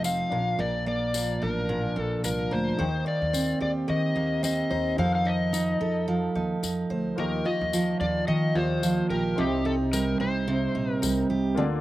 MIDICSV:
0, 0, Header, 1, 6, 480
1, 0, Start_track
1, 0, Tempo, 549451
1, 518, Time_signature, 4, 2, 24, 8
1, 10315, End_track
2, 0, Start_track
2, 0, Title_t, "Electric slide guitar"
2, 0, Program_c, 0, 29
2, 48, Note_on_c, 0, 77, 99
2, 526, Note_on_c, 0, 74, 91
2, 538, Note_off_c, 0, 77, 0
2, 759, Note_off_c, 0, 74, 0
2, 769, Note_on_c, 0, 74, 80
2, 1247, Note_on_c, 0, 70, 86
2, 1258, Note_off_c, 0, 74, 0
2, 1754, Note_off_c, 0, 70, 0
2, 1754, Note_on_c, 0, 69, 86
2, 1957, Note_off_c, 0, 69, 0
2, 1967, Note_on_c, 0, 70, 88
2, 2207, Note_on_c, 0, 72, 102
2, 2210, Note_off_c, 0, 70, 0
2, 2687, Note_off_c, 0, 72, 0
2, 2690, Note_on_c, 0, 74, 85
2, 3154, Note_off_c, 0, 74, 0
2, 3164, Note_on_c, 0, 74, 91
2, 3228, Note_off_c, 0, 74, 0
2, 3404, Note_on_c, 0, 75, 92
2, 3877, Note_off_c, 0, 75, 0
2, 3887, Note_on_c, 0, 75, 90
2, 4359, Note_off_c, 0, 75, 0
2, 4362, Note_on_c, 0, 77, 88
2, 4489, Note_off_c, 0, 77, 0
2, 4500, Note_on_c, 0, 77, 86
2, 4601, Note_on_c, 0, 75, 79
2, 4605, Note_off_c, 0, 77, 0
2, 5283, Note_off_c, 0, 75, 0
2, 6286, Note_on_c, 0, 70, 95
2, 6504, Note_off_c, 0, 70, 0
2, 6515, Note_on_c, 0, 75, 90
2, 6990, Note_off_c, 0, 75, 0
2, 6994, Note_on_c, 0, 74, 102
2, 7230, Note_off_c, 0, 74, 0
2, 7234, Note_on_c, 0, 75, 104
2, 7474, Note_on_c, 0, 72, 88
2, 7481, Note_off_c, 0, 75, 0
2, 7949, Note_off_c, 0, 72, 0
2, 7952, Note_on_c, 0, 70, 91
2, 8200, Note_off_c, 0, 70, 0
2, 8200, Note_on_c, 0, 67, 80
2, 8420, Note_off_c, 0, 67, 0
2, 8439, Note_on_c, 0, 69, 76
2, 8503, Note_off_c, 0, 69, 0
2, 8677, Note_on_c, 0, 70, 98
2, 8914, Note_off_c, 0, 70, 0
2, 8918, Note_on_c, 0, 72, 87
2, 9556, Note_off_c, 0, 72, 0
2, 9556, Note_on_c, 0, 70, 87
2, 9840, Note_off_c, 0, 70, 0
2, 10315, End_track
3, 0, Start_track
3, 0, Title_t, "Grand piano"
3, 0, Program_c, 1, 0
3, 0, Control_c, 1, 64, 127
3, 0, Note_on_c, 1, 63, 54
3, 0, Note_on_c, 1, 69, 50
3, 0, Note_on_c, 1, 77, 62
3, 234, Note_off_c, 1, 63, 0
3, 243, Note_off_c, 1, 69, 0
3, 257, Note_on_c, 1, 62, 59
3, 275, Note_on_c, 1, 70, 55
3, 278, Note_off_c, 1, 77, 0
3, 288, Control_c, 1, 64, 0
3, 291, Note_on_c, 1, 77, 66
3, 467, Control_c, 1, 64, 127
3, 2153, Note_off_c, 1, 62, 0
3, 2162, Note_off_c, 1, 70, 0
3, 2170, Note_off_c, 1, 77, 0
3, 2421, Note_on_c, 1, 63, 62
3, 2439, Note_on_c, 1, 72, 57
3, 2448, Control_c, 1, 64, 0
3, 2459, Note_on_c, 1, 79, 64
3, 2599, Control_c, 1, 64, 127
3, 4075, Note_off_c, 1, 63, 0
3, 4084, Note_off_c, 1, 72, 0
3, 4094, Note_off_c, 1, 79, 0
3, 4104, Note_on_c, 1, 63, 47
3, 4112, Note_on_c, 1, 72, 42
3, 4120, Note_on_c, 1, 82, 50
3, 4321, Note_off_c, 1, 63, 0
3, 4334, Note_on_c, 1, 63, 67
3, 4353, Note_on_c, 1, 69, 57
3, 4354, Note_off_c, 1, 72, 0
3, 4358, Note_off_c, 1, 82, 0
3, 4368, Control_c, 1, 64, 0
3, 4369, Note_on_c, 1, 77, 69
3, 4508, Control_c, 1, 64, 127
3, 6229, Note_off_c, 1, 63, 0
3, 6238, Note_off_c, 1, 69, 0
3, 6246, Note_off_c, 1, 77, 0
3, 6252, Note_on_c, 1, 58, 58
3, 6265, Note_on_c, 1, 65, 54
3, 6279, Note_on_c, 1, 67, 55
3, 6286, Control_c, 1, 64, 0
3, 6287, Note_on_c, 1, 75, 68
3, 6422, Control_c, 1, 64, 127
3, 7438, Note_off_c, 1, 58, 0
3, 7445, Note_off_c, 1, 65, 0
3, 7452, Note_off_c, 1, 67, 0
3, 7456, Note_off_c, 1, 75, 0
3, 7464, Note_on_c, 1, 58, 43
3, 7471, Note_on_c, 1, 65, 41
3, 7477, Note_on_c, 1, 67, 43
3, 7484, Note_on_c, 1, 74, 39
3, 7538, Note_on_c, 1, 75, 53
3, 7541, Note_off_c, 1, 74, 0
3, 8173, Note_on_c, 1, 60, 62
3, 8184, Note_off_c, 1, 67, 0
3, 8184, Note_on_c, 1, 63, 53
3, 8189, Note_off_c, 1, 58, 0
3, 8192, Note_off_c, 1, 65, 0
3, 8195, Note_off_c, 1, 75, 0
3, 8198, Note_on_c, 1, 67, 59
3, 8204, Control_c, 1, 64, 0
3, 8208, Note_on_c, 1, 75, 68
3, 8335, Control_c, 1, 64, 127
3, 10068, Note_off_c, 1, 60, 0
3, 10074, Note_off_c, 1, 63, 0
3, 10080, Note_off_c, 1, 67, 0
3, 10085, Note_off_c, 1, 75, 0
3, 10087, Note_on_c, 1, 58, 76
3, 10099, Note_on_c, 1, 65, 69
3, 10112, Note_on_c, 1, 69, 70
3, 10122, Note_on_c, 1, 74, 84
3, 10126, Control_c, 1, 64, 0
3, 10287, Control_c, 1, 64, 127
3, 10315, Note_off_c, 1, 58, 0
3, 10315, Note_off_c, 1, 65, 0
3, 10315, Note_off_c, 1, 69, 0
3, 10315, Note_off_c, 1, 74, 0
3, 10315, End_track
4, 0, Start_track
4, 0, Title_t, "Steel-string acoustic guitar"
4, 0, Program_c, 2, 25
4, 0, Note_on_c, 2, 53, 77
4, 0, Note_on_c, 2, 63, 60
4, 0, Note_on_c, 2, 69, 66
4, 35, Note_on_c, 2, 60, 66
4, 278, Note_on_c, 2, 46, 72
4, 330, Note_off_c, 2, 60, 0
4, 333, Note_off_c, 2, 63, 0
4, 335, Note_off_c, 2, 69, 0
4, 502, Note_off_c, 2, 46, 0
4, 513, Note_on_c, 2, 46, 72
4, 517, Note_on_c, 2, 70, 63
4, 755, Note_on_c, 2, 58, 59
4, 996, Note_off_c, 2, 53, 0
4, 1000, Note_on_c, 2, 53, 65
4, 1237, Note_on_c, 2, 62, 60
4, 1466, Note_off_c, 2, 46, 0
4, 1477, Note_on_c, 2, 46, 77
4, 1709, Note_off_c, 2, 58, 0
4, 1713, Note_on_c, 2, 58, 57
4, 1944, Note_off_c, 2, 53, 0
4, 1954, Note_on_c, 2, 53, 71
4, 2191, Note_off_c, 2, 70, 0
4, 2194, Note_on_c, 2, 70, 64
4, 2430, Note_off_c, 2, 46, 0
4, 2433, Note_on_c, 2, 51, 77
4, 2437, Note_off_c, 2, 70, 0
4, 2440, Note_on_c, 2, 72, 67
4, 2489, Note_off_c, 2, 53, 0
4, 2490, Note_off_c, 2, 62, 0
4, 2669, Note_off_c, 2, 58, 0
4, 2673, Note_on_c, 2, 58, 59
4, 2912, Note_on_c, 2, 60, 68
4, 3149, Note_on_c, 2, 67, 64
4, 3385, Note_off_c, 2, 51, 0
4, 3388, Note_on_c, 2, 51, 80
4, 3621, Note_off_c, 2, 58, 0
4, 3631, Note_on_c, 2, 58, 64
4, 3865, Note_off_c, 2, 60, 0
4, 3868, Note_on_c, 2, 60, 71
4, 4107, Note_off_c, 2, 72, 0
4, 4111, Note_on_c, 2, 72, 70
4, 4349, Note_off_c, 2, 60, 0
4, 4352, Note_on_c, 2, 53, 84
4, 4355, Note_off_c, 2, 72, 0
4, 4358, Note_on_c, 2, 72, 70
4, 4405, Note_off_c, 2, 67, 0
4, 4406, Note_off_c, 2, 58, 0
4, 4589, Note_on_c, 2, 63, 56
4, 4826, Note_off_c, 2, 63, 0
4, 4829, Note_on_c, 2, 63, 69
4, 5072, Note_on_c, 2, 69, 65
4, 5099, Note_off_c, 2, 51, 0
4, 5306, Note_off_c, 2, 53, 0
4, 5309, Note_on_c, 2, 53, 78
4, 5547, Note_off_c, 2, 63, 0
4, 5551, Note_on_c, 2, 63, 59
4, 5787, Note_off_c, 2, 63, 0
4, 5791, Note_on_c, 2, 63, 69
4, 6018, Note_off_c, 2, 72, 0
4, 6029, Note_on_c, 2, 72, 68
4, 6271, Note_on_c, 2, 51, 79
4, 6324, Note_off_c, 2, 72, 0
4, 6326, Note_off_c, 2, 69, 0
4, 6511, Note_on_c, 2, 65, 55
4, 6537, Note_off_c, 2, 63, 0
4, 6751, Note_off_c, 2, 53, 0
4, 6755, Note_on_c, 2, 53, 64
4, 6993, Note_on_c, 2, 58, 65
4, 7228, Note_off_c, 2, 51, 0
4, 7231, Note_on_c, 2, 51, 80
4, 7461, Note_off_c, 2, 65, 0
4, 7472, Note_on_c, 2, 65, 56
4, 7702, Note_off_c, 2, 53, 0
4, 7712, Note_on_c, 2, 53, 72
4, 7953, Note_on_c, 2, 67, 68
4, 8190, Note_off_c, 2, 51, 0
4, 8193, Note_on_c, 2, 48, 84
4, 8245, Note_off_c, 2, 65, 0
4, 8246, Note_off_c, 2, 53, 0
4, 8246, Note_off_c, 2, 58, 0
4, 8430, Note_on_c, 2, 63, 64
4, 8673, Note_on_c, 2, 55, 70
4, 8910, Note_on_c, 2, 60, 61
4, 9142, Note_off_c, 2, 48, 0
4, 9152, Note_on_c, 2, 48, 89
4, 9379, Note_off_c, 2, 63, 0
4, 9390, Note_on_c, 2, 63, 60
4, 9617, Note_off_c, 2, 55, 0
4, 9628, Note_on_c, 2, 55, 70
4, 9867, Note_off_c, 2, 67, 0
4, 9870, Note_on_c, 2, 67, 69
4, 10108, Note_off_c, 2, 48, 0
4, 10111, Note_on_c, 2, 50, 90
4, 10163, Note_off_c, 2, 55, 0
4, 10164, Note_off_c, 2, 63, 0
4, 10165, Note_off_c, 2, 60, 0
4, 10165, Note_off_c, 2, 67, 0
4, 10315, Note_off_c, 2, 50, 0
4, 10315, End_track
5, 0, Start_track
5, 0, Title_t, "Upright bass"
5, 0, Program_c, 3, 32
5, 0, Note_on_c, 3, 29, 89
5, 192, Note_off_c, 3, 29, 0
5, 274, Note_on_c, 3, 34, 82
5, 472, Note_off_c, 3, 34, 0
5, 513, Note_on_c, 3, 34, 99
5, 1201, Note_off_c, 3, 34, 0
5, 1240, Note_on_c, 3, 33, 89
5, 1633, Note_off_c, 3, 33, 0
5, 1714, Note_on_c, 3, 34, 86
5, 1913, Note_off_c, 3, 34, 0
5, 1959, Note_on_c, 3, 36, 83
5, 2156, Note_off_c, 3, 36, 0
5, 2196, Note_on_c, 3, 38, 93
5, 2394, Note_off_c, 3, 38, 0
5, 2441, Note_on_c, 3, 39, 101
5, 2637, Note_off_c, 3, 39, 0
5, 2811, Note_on_c, 3, 39, 102
5, 3095, Note_off_c, 3, 39, 0
5, 3154, Note_on_c, 3, 39, 85
5, 3352, Note_off_c, 3, 39, 0
5, 3398, Note_on_c, 3, 51, 104
5, 3595, Note_off_c, 3, 51, 0
5, 3637, Note_on_c, 3, 39, 88
5, 4030, Note_off_c, 3, 39, 0
5, 4117, Note_on_c, 3, 39, 85
5, 4313, Note_off_c, 3, 39, 0
5, 4351, Note_on_c, 3, 41, 105
5, 5038, Note_off_c, 3, 41, 0
5, 5073, Note_on_c, 3, 41, 89
5, 5468, Note_off_c, 3, 41, 0
5, 5553, Note_on_c, 3, 39, 97
5, 5751, Note_off_c, 3, 39, 0
5, 5796, Note_on_c, 3, 41, 87
5, 5992, Note_off_c, 3, 41, 0
5, 6035, Note_on_c, 3, 38, 82
5, 6232, Note_off_c, 3, 38, 0
5, 6276, Note_on_c, 3, 39, 93
5, 6472, Note_off_c, 3, 39, 0
5, 6650, Note_on_c, 3, 39, 101
5, 6934, Note_off_c, 3, 39, 0
5, 6993, Note_on_c, 3, 39, 92
5, 7190, Note_off_c, 3, 39, 0
5, 7236, Note_on_c, 3, 51, 96
5, 7432, Note_off_c, 3, 51, 0
5, 7470, Note_on_c, 3, 39, 88
5, 7865, Note_off_c, 3, 39, 0
5, 7951, Note_on_c, 3, 34, 84
5, 8148, Note_off_c, 3, 34, 0
5, 8190, Note_on_c, 3, 36, 101
5, 8877, Note_off_c, 3, 36, 0
5, 8909, Note_on_c, 3, 36, 84
5, 9304, Note_off_c, 3, 36, 0
5, 9388, Note_on_c, 3, 34, 90
5, 9587, Note_off_c, 3, 34, 0
5, 9631, Note_on_c, 3, 36, 91
5, 9829, Note_off_c, 3, 36, 0
5, 9871, Note_on_c, 3, 36, 80
5, 10113, Note_off_c, 3, 36, 0
5, 10113, Note_on_c, 3, 38, 108
5, 10310, Note_off_c, 3, 38, 0
5, 10315, End_track
6, 0, Start_track
6, 0, Title_t, "Drums"
6, 37, Note_on_c, 9, 54, 80
6, 125, Note_off_c, 9, 54, 0
6, 997, Note_on_c, 9, 54, 83
6, 1084, Note_off_c, 9, 54, 0
6, 1958, Note_on_c, 9, 54, 82
6, 2045, Note_off_c, 9, 54, 0
6, 2921, Note_on_c, 9, 54, 90
6, 3008, Note_off_c, 9, 54, 0
6, 3876, Note_on_c, 9, 54, 76
6, 3964, Note_off_c, 9, 54, 0
6, 4838, Note_on_c, 9, 54, 88
6, 4925, Note_off_c, 9, 54, 0
6, 5795, Note_on_c, 9, 54, 81
6, 5882, Note_off_c, 9, 54, 0
6, 6756, Note_on_c, 9, 54, 91
6, 6843, Note_off_c, 9, 54, 0
6, 7715, Note_on_c, 9, 54, 84
6, 7803, Note_off_c, 9, 54, 0
6, 8676, Note_on_c, 9, 54, 90
6, 8763, Note_off_c, 9, 54, 0
6, 9635, Note_on_c, 9, 54, 84
6, 9722, Note_off_c, 9, 54, 0
6, 10315, End_track
0, 0, End_of_file